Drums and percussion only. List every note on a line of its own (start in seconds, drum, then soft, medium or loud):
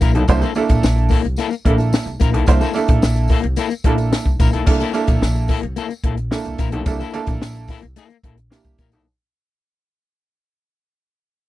0.01 kick loud
0.01 closed hi-hat medium
0.01 tambourine medium
0.15 closed hi-hat medium
0.28 kick loud
0.28 closed hi-hat medium
0.28 tambourine medium
0.42 closed hi-hat soft
0.42 tambourine soft
0.55 closed hi-hat medium
0.55 tambourine medium
0.69 kick medium
0.69 closed hi-hat medium
0.69 tambourine soft
0.83 snare loud
0.83 tambourine loud
0.98 closed hi-hat soft
1.09 kick loud
1.09 open hi-hat medium
1.09 tambourine medium
1.25 closed hi-hat soft
1.36 snare soft
1.36 closed hi-hat loud
1.36 tambourine medium
1.51 closed hi-hat soft
1.51 tambourine soft
1.65 kick medium
1.65 closed hi-hat medium
1.78 closed hi-hat soft
1.78 tambourine soft
1.93 snare loud
1.93 tambourine medium
2.07 closed hi-hat soft
2.20 kick loud
2.20 closed hi-hat medium
2.20 tambourine medium
2.34 closed hi-hat medium
2.46 kick loud
2.46 closed hi-hat loud
2.46 tambourine medium
2.61 closed hi-hat soft
2.61 tambourine medium
2.73 closed hi-hat medium
2.73 tambourine medium
2.88 kick loud
2.88 closed hi-hat medium
3.02 snare loud
3.02 tambourine loud
3.16 closed hi-hat soft
3.28 kick medium
3.28 open hi-hat medium
3.28 tambourine soft
3.44 closed hi-hat medium
3.56 snare soft
3.56 closed hi-hat loud
3.56 tambourine medium
3.70 closed hi-hat soft
3.70 tambourine soft
3.84 kick medium
3.84 closed hi-hat medium
3.98 closed hi-hat soft
3.98 tambourine soft
4.13 snare loud
4.13 tambourine medium
4.26 kick medium
4.40 kick loud
4.40 closed hi-hat medium
4.40 tambourine medium
4.53 closed hi-hat medium
4.66 kick loud
4.66 crash loud
4.66 tambourine medium
4.80 closed hi-hat soft
4.80 tambourine soft
4.93 closed hi-hat medium
4.93 tambourine medium
5.07 kick loud
5.07 closed hi-hat medium
5.07 tambourine soft
5.22 snare loud
5.22 tambourine loud
5.36 closed hi-hat soft
5.48 kick medium
5.48 open hi-hat medium
5.48 tambourine medium
5.63 closed hi-hat soft
5.76 closed hi-hat medium
5.76 tambourine medium
5.90 closed hi-hat soft
5.90 tambourine soft
6.04 kick medium
6.04 closed hi-hat medium
6.17 closed hi-hat soft
6.32 snare loud
6.32 tambourine medium
6.45 closed hi-hat soft
6.58 kick medium
6.58 closed hi-hat medium
6.58 tambourine medium
6.72 closed hi-hat medium
6.86 kick loud
6.86 closed hi-hat medium
6.86 tambourine medium
7.00 closed hi-hat soft
7.00 tambourine soft
7.14 closed hi-hat medium
7.14 tambourine medium
7.27 kick loud
7.27 closed hi-hat medium
7.27 tambourine soft
7.42 snare loud
7.42 tambourine loud
7.55 closed hi-hat soft
7.67 kick medium
7.67 open hi-hat medium
7.67 tambourine medium
7.82 closed hi-hat medium
7.96 snare soft
7.96 closed hi-hat loud
7.96 tambourine medium
8.10 closed hi-hat soft
8.23 kick medium
8.23 closed hi-hat medium
8.38 closed hi-hat soft
8.52 snare loud
8.52 tambourine medium
8.64 kick medium
8.64 closed hi-hat soft
8.78 kick loud
8.78 closed hi-hat medium
8.78 tambourine medium
8.92 closed hi-hat medium
8.92 tambourine soft